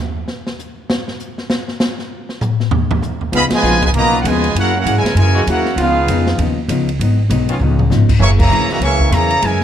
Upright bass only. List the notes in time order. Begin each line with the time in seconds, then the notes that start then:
3.32 C#2
3.50 muted upright bass stroke
3.63 A#1
3.94 B1
4.24 D#2
4.55 F#2
4.85 G#2
5.03 muted upright bass stroke
5.15 F#2
5.46 D#2
5.76 C#2
6.07 F2
6.38 D#2
6.68 C#2
6.99 G#1
7.30 B1
7.59 C#2
7.90 G#1
8.20 F#1
8.50 A#1
8.68 muted upright bass stroke
8.79 C#2
9.11 E2
9.42 F#2